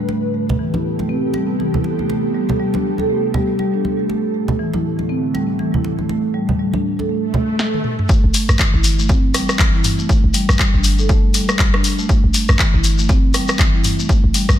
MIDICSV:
0, 0, Header, 1, 7, 480
1, 0, Start_track
1, 0, Key_signature, 0, "minor"
1, 0, Tempo, 500000
1, 88, Time_signature, 4, 2, 24, 8
1, 14008, End_track
2, 0, Start_track
2, 0, Title_t, "Ambient pad"
2, 0, Program_c, 0, 92
2, 88, Note_on_c, 0, 48, 81
2, 88, Note_on_c, 0, 69, 87
2, 89, Note_on_c, 0, 59, 72
2, 89, Note_on_c, 0, 67, 75
2, 3890, Note_off_c, 0, 48, 0
2, 3890, Note_off_c, 0, 59, 0
2, 3890, Note_off_c, 0, 67, 0
2, 3928, Note_on_c, 0, 45, 84
2, 3929, Note_on_c, 0, 50, 71
2, 3930, Note_on_c, 0, 57, 76
2, 7250, Note_off_c, 0, 69, 0
2, 7255, Note_off_c, 0, 45, 0
2, 7255, Note_off_c, 0, 50, 0
2, 7256, Note_off_c, 0, 57, 0
2, 14008, End_track
3, 0, Start_track
3, 0, Title_t, "Marimba"
3, 0, Program_c, 1, 12
3, 88, Note_on_c, 1, 57, 72
3, 216, Note_off_c, 1, 57, 0
3, 328, Note_on_c, 1, 57, 69
3, 455, Note_off_c, 1, 57, 0
3, 568, Note_on_c, 1, 52, 72
3, 696, Note_off_c, 1, 52, 0
3, 709, Note_on_c, 1, 64, 65
3, 763, Note_off_c, 1, 64, 0
3, 950, Note_on_c, 1, 57, 70
3, 1044, Note_off_c, 1, 57, 0
3, 1048, Note_on_c, 1, 60, 96
3, 1183, Note_off_c, 1, 60, 0
3, 1288, Note_on_c, 1, 55, 92
3, 1416, Note_off_c, 1, 55, 0
3, 1528, Note_on_c, 1, 52, 77
3, 1656, Note_off_c, 1, 52, 0
3, 1671, Note_on_c, 1, 64, 68
3, 1724, Note_off_c, 1, 64, 0
3, 1909, Note_on_c, 1, 57, 68
3, 1999, Note_off_c, 1, 57, 0
3, 2010, Note_on_c, 1, 57, 74
3, 2144, Note_off_c, 1, 57, 0
3, 2250, Note_on_c, 1, 55, 93
3, 2376, Note_off_c, 1, 55, 0
3, 2490, Note_on_c, 1, 55, 92
3, 2617, Note_off_c, 1, 55, 0
3, 2631, Note_on_c, 1, 62, 68
3, 2719, Note_off_c, 1, 62, 0
3, 2871, Note_on_c, 1, 69, 67
3, 2964, Note_off_c, 1, 69, 0
3, 2970, Note_on_c, 1, 57, 77
3, 3104, Note_off_c, 1, 57, 0
3, 3209, Note_on_c, 1, 55, 94
3, 3336, Note_off_c, 1, 55, 0
3, 3449, Note_on_c, 1, 55, 95
3, 3576, Note_off_c, 1, 55, 0
3, 3590, Note_on_c, 1, 62, 71
3, 3679, Note_off_c, 1, 62, 0
3, 3831, Note_on_c, 1, 57, 71
3, 3916, Note_off_c, 1, 57, 0
3, 3928, Note_on_c, 1, 57, 75
3, 4055, Note_off_c, 1, 57, 0
3, 4168, Note_on_c, 1, 57, 69
3, 4296, Note_off_c, 1, 57, 0
3, 4408, Note_on_c, 1, 52, 77
3, 4536, Note_off_c, 1, 52, 0
3, 4550, Note_on_c, 1, 64, 69
3, 4603, Note_off_c, 1, 64, 0
3, 4790, Note_on_c, 1, 57, 71
3, 4884, Note_off_c, 1, 57, 0
3, 4889, Note_on_c, 1, 60, 94
3, 5023, Note_off_c, 1, 60, 0
3, 5130, Note_on_c, 1, 55, 92
3, 5256, Note_off_c, 1, 55, 0
3, 5369, Note_on_c, 1, 52, 74
3, 5496, Note_off_c, 1, 52, 0
3, 5512, Note_on_c, 1, 64, 71
3, 5564, Note_off_c, 1, 64, 0
3, 5750, Note_on_c, 1, 57, 71
3, 5836, Note_off_c, 1, 57, 0
3, 5848, Note_on_c, 1, 57, 76
3, 5983, Note_off_c, 1, 57, 0
3, 6087, Note_on_c, 1, 55, 88
3, 6215, Note_off_c, 1, 55, 0
3, 6328, Note_on_c, 1, 55, 95
3, 6456, Note_off_c, 1, 55, 0
3, 6470, Note_on_c, 1, 62, 69
3, 6559, Note_off_c, 1, 62, 0
3, 6710, Note_on_c, 1, 69, 70
3, 6804, Note_off_c, 1, 69, 0
3, 6809, Note_on_c, 1, 57, 75
3, 6943, Note_off_c, 1, 57, 0
3, 7050, Note_on_c, 1, 57, 70
3, 7177, Note_off_c, 1, 57, 0
3, 7191, Note_on_c, 1, 57, 68
3, 7284, Note_off_c, 1, 57, 0
3, 7770, Note_on_c, 1, 57, 82
3, 7897, Note_off_c, 1, 57, 0
3, 8010, Note_on_c, 1, 57, 72
3, 8137, Note_off_c, 1, 57, 0
3, 8250, Note_on_c, 1, 52, 83
3, 8376, Note_off_c, 1, 52, 0
3, 8392, Note_on_c, 1, 64, 73
3, 8444, Note_off_c, 1, 64, 0
3, 8631, Note_on_c, 1, 57, 79
3, 8724, Note_off_c, 1, 57, 0
3, 8731, Note_on_c, 1, 60, 106
3, 8864, Note_off_c, 1, 60, 0
3, 8970, Note_on_c, 1, 55, 101
3, 9096, Note_off_c, 1, 55, 0
3, 9210, Note_on_c, 1, 52, 86
3, 9337, Note_off_c, 1, 52, 0
3, 9350, Note_on_c, 1, 64, 75
3, 9403, Note_off_c, 1, 64, 0
3, 9592, Note_on_c, 1, 57, 71
3, 9677, Note_off_c, 1, 57, 0
3, 9689, Note_on_c, 1, 57, 82
3, 9823, Note_off_c, 1, 57, 0
3, 9929, Note_on_c, 1, 55, 103
3, 10056, Note_off_c, 1, 55, 0
3, 10169, Note_on_c, 1, 55, 106
3, 10296, Note_off_c, 1, 55, 0
3, 10311, Note_on_c, 1, 62, 69
3, 10399, Note_off_c, 1, 62, 0
3, 10550, Note_on_c, 1, 69, 73
3, 10644, Note_off_c, 1, 69, 0
3, 10650, Note_on_c, 1, 57, 83
3, 10784, Note_off_c, 1, 57, 0
3, 10891, Note_on_c, 1, 55, 99
3, 11017, Note_off_c, 1, 55, 0
3, 11131, Note_on_c, 1, 55, 105
3, 11257, Note_off_c, 1, 55, 0
3, 11273, Note_on_c, 1, 62, 79
3, 11360, Note_off_c, 1, 62, 0
3, 11512, Note_on_c, 1, 57, 78
3, 11600, Note_off_c, 1, 57, 0
3, 11610, Note_on_c, 1, 57, 83
3, 11737, Note_off_c, 1, 57, 0
3, 11850, Note_on_c, 1, 57, 77
3, 11976, Note_off_c, 1, 57, 0
3, 12091, Note_on_c, 1, 52, 87
3, 12217, Note_off_c, 1, 52, 0
3, 12232, Note_on_c, 1, 64, 75
3, 12284, Note_off_c, 1, 64, 0
3, 12473, Note_on_c, 1, 57, 78
3, 12565, Note_off_c, 1, 57, 0
3, 12571, Note_on_c, 1, 60, 102
3, 12704, Note_off_c, 1, 60, 0
3, 12809, Note_on_c, 1, 55, 100
3, 12936, Note_off_c, 1, 55, 0
3, 13049, Note_on_c, 1, 52, 87
3, 13176, Note_off_c, 1, 52, 0
3, 13192, Note_on_c, 1, 64, 76
3, 13244, Note_off_c, 1, 64, 0
3, 13432, Note_on_c, 1, 57, 73
3, 13519, Note_off_c, 1, 57, 0
3, 13530, Note_on_c, 1, 57, 82
3, 13664, Note_off_c, 1, 57, 0
3, 13771, Note_on_c, 1, 55, 98
3, 13897, Note_off_c, 1, 55, 0
3, 14008, End_track
4, 0, Start_track
4, 0, Title_t, "808-style bass"
4, 0, Program_c, 2, 38
4, 7910, Note_on_c, 2, 33, 98
4, 7975, Note_off_c, 2, 33, 0
4, 8149, Note_on_c, 2, 33, 110
4, 8215, Note_off_c, 2, 33, 0
4, 8388, Note_on_c, 2, 33, 106
4, 8489, Note_on_c, 2, 31, 94
4, 8503, Note_off_c, 2, 33, 0
4, 9032, Note_off_c, 2, 31, 0
4, 9209, Note_on_c, 2, 33, 89
4, 9302, Note_off_c, 2, 33, 0
4, 9830, Note_on_c, 2, 33, 96
4, 9895, Note_off_c, 2, 33, 0
4, 10070, Note_on_c, 2, 33, 106
4, 10135, Note_off_c, 2, 33, 0
4, 10310, Note_on_c, 2, 33, 98
4, 10409, Note_on_c, 2, 31, 97
4, 10423, Note_off_c, 2, 33, 0
4, 10952, Note_off_c, 2, 31, 0
4, 11129, Note_on_c, 2, 33, 89
4, 11222, Note_off_c, 2, 33, 0
4, 11749, Note_on_c, 2, 33, 100
4, 11814, Note_off_c, 2, 33, 0
4, 11990, Note_on_c, 2, 33, 110
4, 12055, Note_off_c, 2, 33, 0
4, 12230, Note_on_c, 2, 33, 104
4, 12328, Note_on_c, 2, 31, 91
4, 12343, Note_off_c, 2, 33, 0
4, 12872, Note_off_c, 2, 31, 0
4, 13048, Note_on_c, 2, 33, 93
4, 13141, Note_off_c, 2, 33, 0
4, 13670, Note_on_c, 2, 33, 103
4, 13735, Note_off_c, 2, 33, 0
4, 13909, Note_on_c, 2, 33, 105
4, 13975, Note_off_c, 2, 33, 0
4, 14008, End_track
5, 0, Start_track
5, 0, Title_t, "Swell"
5, 0, Program_c, 3, 103
5, 6808, Note_on_c, 3, 60, 70
5, 7768, Note_off_c, 3, 60, 0
5, 14008, End_track
6, 0, Start_track
6, 0, Title_t, "Shekere"
6, 7765, Note_on_c, 9, 82, 37
6, 7861, Note_off_c, 9, 82, 0
6, 8007, Note_on_c, 9, 82, 88
6, 8103, Note_off_c, 9, 82, 0
6, 8146, Note_on_c, 9, 82, 47
6, 8242, Note_off_c, 9, 82, 0
6, 8243, Note_on_c, 9, 82, 42
6, 8339, Note_off_c, 9, 82, 0
6, 8486, Note_on_c, 9, 82, 90
6, 8582, Note_off_c, 9, 82, 0
6, 8630, Note_on_c, 9, 82, 56
6, 8726, Note_off_c, 9, 82, 0
6, 8726, Note_on_c, 9, 82, 42
6, 8822, Note_off_c, 9, 82, 0
6, 8972, Note_on_c, 9, 82, 99
6, 9068, Note_off_c, 9, 82, 0
6, 9107, Note_on_c, 9, 82, 49
6, 9203, Note_off_c, 9, 82, 0
6, 9208, Note_on_c, 9, 82, 42
6, 9304, Note_off_c, 9, 82, 0
6, 9449, Note_on_c, 9, 82, 94
6, 9545, Note_off_c, 9, 82, 0
6, 9588, Note_on_c, 9, 82, 49
6, 9684, Note_off_c, 9, 82, 0
6, 9693, Note_on_c, 9, 82, 42
6, 9789, Note_off_c, 9, 82, 0
6, 9925, Note_on_c, 9, 82, 86
6, 10021, Note_off_c, 9, 82, 0
6, 10075, Note_on_c, 9, 82, 54
6, 10171, Note_off_c, 9, 82, 0
6, 10174, Note_on_c, 9, 82, 40
6, 10270, Note_off_c, 9, 82, 0
6, 10405, Note_on_c, 9, 82, 101
6, 10501, Note_off_c, 9, 82, 0
6, 10545, Note_on_c, 9, 82, 60
6, 10641, Note_off_c, 9, 82, 0
6, 10650, Note_on_c, 9, 82, 44
6, 10746, Note_off_c, 9, 82, 0
6, 10889, Note_on_c, 9, 82, 105
6, 10985, Note_off_c, 9, 82, 0
6, 11025, Note_on_c, 9, 82, 55
6, 11121, Note_off_c, 9, 82, 0
6, 11130, Note_on_c, 9, 82, 40
6, 11226, Note_off_c, 9, 82, 0
6, 11371, Note_on_c, 9, 82, 89
6, 11467, Note_off_c, 9, 82, 0
6, 11504, Note_on_c, 9, 82, 56
6, 11600, Note_off_c, 9, 82, 0
6, 11611, Note_on_c, 9, 82, 44
6, 11707, Note_off_c, 9, 82, 0
6, 11847, Note_on_c, 9, 82, 90
6, 11943, Note_off_c, 9, 82, 0
6, 11982, Note_on_c, 9, 82, 49
6, 12078, Note_off_c, 9, 82, 0
6, 12086, Note_on_c, 9, 82, 40
6, 12182, Note_off_c, 9, 82, 0
6, 12326, Note_on_c, 9, 82, 100
6, 12422, Note_off_c, 9, 82, 0
6, 12463, Note_on_c, 9, 82, 60
6, 12559, Note_off_c, 9, 82, 0
6, 12565, Note_on_c, 9, 82, 44
6, 12661, Note_off_c, 9, 82, 0
6, 12808, Note_on_c, 9, 82, 108
6, 12904, Note_off_c, 9, 82, 0
6, 12938, Note_on_c, 9, 82, 55
6, 13034, Note_off_c, 9, 82, 0
6, 13042, Note_on_c, 9, 82, 41
6, 13138, Note_off_c, 9, 82, 0
6, 13289, Note_on_c, 9, 82, 95
6, 13385, Note_off_c, 9, 82, 0
6, 13432, Note_on_c, 9, 82, 59
6, 13528, Note_off_c, 9, 82, 0
6, 13531, Note_on_c, 9, 82, 41
6, 13627, Note_off_c, 9, 82, 0
6, 13772, Note_on_c, 9, 82, 86
6, 13868, Note_off_c, 9, 82, 0
6, 13907, Note_on_c, 9, 82, 57
6, 14003, Note_off_c, 9, 82, 0
6, 14008, End_track
7, 0, Start_track
7, 0, Title_t, "Drums"
7, 82, Note_on_c, 9, 62, 47
7, 178, Note_off_c, 9, 62, 0
7, 474, Note_on_c, 9, 62, 36
7, 476, Note_on_c, 9, 64, 84
7, 570, Note_off_c, 9, 62, 0
7, 572, Note_off_c, 9, 64, 0
7, 708, Note_on_c, 9, 63, 91
7, 715, Note_on_c, 9, 62, 46
7, 804, Note_off_c, 9, 63, 0
7, 811, Note_off_c, 9, 62, 0
7, 952, Note_on_c, 9, 62, 37
7, 956, Note_on_c, 9, 63, 61
7, 1048, Note_off_c, 9, 62, 0
7, 1052, Note_off_c, 9, 63, 0
7, 1283, Note_on_c, 9, 62, 48
7, 1379, Note_off_c, 9, 62, 0
7, 1535, Note_on_c, 9, 62, 36
7, 1631, Note_off_c, 9, 62, 0
7, 1672, Note_on_c, 9, 64, 73
7, 1768, Note_off_c, 9, 64, 0
7, 1769, Note_on_c, 9, 62, 43
7, 1865, Note_off_c, 9, 62, 0
7, 1912, Note_on_c, 9, 63, 52
7, 2008, Note_off_c, 9, 63, 0
7, 2012, Note_on_c, 9, 62, 46
7, 2108, Note_off_c, 9, 62, 0
7, 2388, Note_on_c, 9, 63, 50
7, 2390, Note_on_c, 9, 62, 39
7, 2395, Note_on_c, 9, 64, 82
7, 2484, Note_off_c, 9, 63, 0
7, 2486, Note_off_c, 9, 62, 0
7, 2491, Note_off_c, 9, 64, 0
7, 2628, Note_on_c, 9, 62, 47
7, 2636, Note_on_c, 9, 63, 84
7, 2724, Note_off_c, 9, 62, 0
7, 2732, Note_off_c, 9, 63, 0
7, 2862, Note_on_c, 9, 63, 60
7, 2874, Note_on_c, 9, 62, 37
7, 2958, Note_off_c, 9, 63, 0
7, 2970, Note_off_c, 9, 62, 0
7, 3208, Note_on_c, 9, 62, 50
7, 3209, Note_on_c, 9, 64, 92
7, 3304, Note_off_c, 9, 62, 0
7, 3305, Note_off_c, 9, 64, 0
7, 3446, Note_on_c, 9, 62, 39
7, 3542, Note_off_c, 9, 62, 0
7, 3693, Note_on_c, 9, 63, 51
7, 3694, Note_on_c, 9, 62, 46
7, 3789, Note_off_c, 9, 63, 0
7, 3790, Note_off_c, 9, 62, 0
7, 3932, Note_on_c, 9, 62, 44
7, 4028, Note_off_c, 9, 62, 0
7, 4303, Note_on_c, 9, 64, 89
7, 4309, Note_on_c, 9, 62, 36
7, 4399, Note_off_c, 9, 64, 0
7, 4405, Note_off_c, 9, 62, 0
7, 4546, Note_on_c, 9, 62, 53
7, 4550, Note_on_c, 9, 63, 83
7, 4642, Note_off_c, 9, 62, 0
7, 4646, Note_off_c, 9, 63, 0
7, 4788, Note_on_c, 9, 62, 36
7, 4792, Note_on_c, 9, 63, 51
7, 4884, Note_off_c, 9, 62, 0
7, 4888, Note_off_c, 9, 63, 0
7, 5133, Note_on_c, 9, 62, 51
7, 5229, Note_off_c, 9, 62, 0
7, 5367, Note_on_c, 9, 62, 34
7, 5463, Note_off_c, 9, 62, 0
7, 5511, Note_on_c, 9, 64, 80
7, 5607, Note_off_c, 9, 64, 0
7, 5611, Note_on_c, 9, 62, 49
7, 5707, Note_off_c, 9, 62, 0
7, 5747, Note_on_c, 9, 63, 59
7, 5843, Note_off_c, 9, 63, 0
7, 5850, Note_on_c, 9, 62, 53
7, 5946, Note_off_c, 9, 62, 0
7, 6228, Note_on_c, 9, 64, 83
7, 6230, Note_on_c, 9, 62, 38
7, 6231, Note_on_c, 9, 63, 53
7, 6324, Note_off_c, 9, 64, 0
7, 6326, Note_off_c, 9, 62, 0
7, 6327, Note_off_c, 9, 63, 0
7, 6466, Note_on_c, 9, 62, 55
7, 6466, Note_on_c, 9, 63, 98
7, 6562, Note_off_c, 9, 62, 0
7, 6562, Note_off_c, 9, 63, 0
7, 6712, Note_on_c, 9, 63, 65
7, 6716, Note_on_c, 9, 62, 42
7, 6808, Note_off_c, 9, 63, 0
7, 6812, Note_off_c, 9, 62, 0
7, 7045, Note_on_c, 9, 64, 110
7, 7051, Note_on_c, 9, 62, 50
7, 7141, Note_off_c, 9, 64, 0
7, 7147, Note_off_c, 9, 62, 0
7, 7288, Note_on_c, 9, 38, 54
7, 7384, Note_off_c, 9, 38, 0
7, 7429, Note_on_c, 9, 48, 58
7, 7525, Note_off_c, 9, 48, 0
7, 7528, Note_on_c, 9, 47, 76
7, 7624, Note_off_c, 9, 47, 0
7, 7669, Note_on_c, 9, 45, 80
7, 7765, Note_off_c, 9, 45, 0
7, 7768, Note_on_c, 9, 36, 127
7, 7864, Note_off_c, 9, 36, 0
7, 8009, Note_on_c, 9, 46, 93
7, 8105, Note_off_c, 9, 46, 0
7, 8151, Note_on_c, 9, 37, 94
7, 8151, Note_on_c, 9, 45, 86
7, 8247, Note_off_c, 9, 37, 0
7, 8247, Note_off_c, 9, 45, 0
7, 8249, Note_on_c, 9, 36, 118
7, 8249, Note_on_c, 9, 39, 98
7, 8345, Note_off_c, 9, 36, 0
7, 8345, Note_off_c, 9, 39, 0
7, 8489, Note_on_c, 9, 46, 84
7, 8585, Note_off_c, 9, 46, 0
7, 8729, Note_on_c, 9, 36, 125
7, 8825, Note_off_c, 9, 36, 0
7, 8970, Note_on_c, 9, 37, 89
7, 8970, Note_on_c, 9, 46, 99
7, 9066, Note_off_c, 9, 37, 0
7, 9066, Note_off_c, 9, 46, 0
7, 9112, Note_on_c, 9, 37, 99
7, 9208, Note_off_c, 9, 37, 0
7, 9209, Note_on_c, 9, 36, 114
7, 9211, Note_on_c, 9, 39, 99
7, 9305, Note_off_c, 9, 36, 0
7, 9307, Note_off_c, 9, 39, 0
7, 9450, Note_on_c, 9, 45, 95
7, 9450, Note_on_c, 9, 46, 79
7, 9546, Note_off_c, 9, 45, 0
7, 9546, Note_off_c, 9, 46, 0
7, 9689, Note_on_c, 9, 36, 127
7, 9785, Note_off_c, 9, 36, 0
7, 9929, Note_on_c, 9, 46, 93
7, 10025, Note_off_c, 9, 46, 0
7, 10070, Note_on_c, 9, 37, 100
7, 10070, Note_on_c, 9, 45, 82
7, 10166, Note_off_c, 9, 37, 0
7, 10166, Note_off_c, 9, 45, 0
7, 10169, Note_on_c, 9, 36, 120
7, 10169, Note_on_c, 9, 39, 96
7, 10265, Note_off_c, 9, 36, 0
7, 10265, Note_off_c, 9, 39, 0
7, 10410, Note_on_c, 9, 46, 86
7, 10506, Note_off_c, 9, 46, 0
7, 10649, Note_on_c, 9, 36, 127
7, 10745, Note_off_c, 9, 36, 0
7, 10888, Note_on_c, 9, 46, 98
7, 10984, Note_off_c, 9, 46, 0
7, 11029, Note_on_c, 9, 37, 98
7, 11125, Note_off_c, 9, 37, 0
7, 11128, Note_on_c, 9, 36, 127
7, 11129, Note_on_c, 9, 39, 97
7, 11224, Note_off_c, 9, 36, 0
7, 11225, Note_off_c, 9, 39, 0
7, 11269, Note_on_c, 9, 37, 94
7, 11365, Note_off_c, 9, 37, 0
7, 11367, Note_on_c, 9, 46, 81
7, 11463, Note_off_c, 9, 46, 0
7, 11608, Note_on_c, 9, 36, 127
7, 11704, Note_off_c, 9, 36, 0
7, 11849, Note_on_c, 9, 46, 91
7, 11945, Note_off_c, 9, 46, 0
7, 11990, Note_on_c, 9, 37, 98
7, 11990, Note_on_c, 9, 45, 83
7, 12086, Note_off_c, 9, 37, 0
7, 12086, Note_off_c, 9, 45, 0
7, 12088, Note_on_c, 9, 36, 120
7, 12089, Note_on_c, 9, 39, 95
7, 12184, Note_off_c, 9, 36, 0
7, 12185, Note_off_c, 9, 39, 0
7, 12329, Note_on_c, 9, 46, 81
7, 12425, Note_off_c, 9, 46, 0
7, 12568, Note_on_c, 9, 36, 127
7, 12664, Note_off_c, 9, 36, 0
7, 12809, Note_on_c, 9, 37, 90
7, 12809, Note_on_c, 9, 46, 97
7, 12905, Note_off_c, 9, 37, 0
7, 12905, Note_off_c, 9, 46, 0
7, 12951, Note_on_c, 9, 37, 101
7, 13047, Note_off_c, 9, 37, 0
7, 13048, Note_on_c, 9, 36, 121
7, 13050, Note_on_c, 9, 39, 97
7, 13144, Note_off_c, 9, 36, 0
7, 13146, Note_off_c, 9, 39, 0
7, 13289, Note_on_c, 9, 45, 89
7, 13289, Note_on_c, 9, 46, 82
7, 13385, Note_off_c, 9, 45, 0
7, 13385, Note_off_c, 9, 46, 0
7, 13528, Note_on_c, 9, 36, 125
7, 13624, Note_off_c, 9, 36, 0
7, 13769, Note_on_c, 9, 46, 88
7, 13865, Note_off_c, 9, 46, 0
7, 13910, Note_on_c, 9, 37, 96
7, 13910, Note_on_c, 9, 45, 79
7, 14006, Note_off_c, 9, 37, 0
7, 14006, Note_off_c, 9, 45, 0
7, 14008, End_track
0, 0, End_of_file